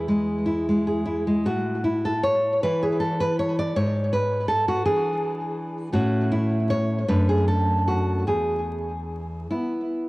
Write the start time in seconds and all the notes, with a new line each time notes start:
Already playing: E2 E4 G#4 B4
0.08 G#3
0.46 E4
0.69 G#3
0.87 G#4
1.05 E4
1.27 G#3
1.46 A2 F#4
1.84 E4
2.05 A4
2.23 C#5
2.63 E3 E4 B4
2.83 G#4
3.00 A4
3.20 B4
3.39 C#5
3.59 D5
3.76 G#2 C#5
4.13 B4
4.48 A4
4.68 F#4
4.85 E3 D4 G#4
5.92 A2 A3 C#4 F#4
6.32 E4
6.70 C#5
7.08 F#2 A3 D4 B4
7.29 G#4
7.48 A4
7.88 F#4
8.27 E2 G#4
9.51 B3 E4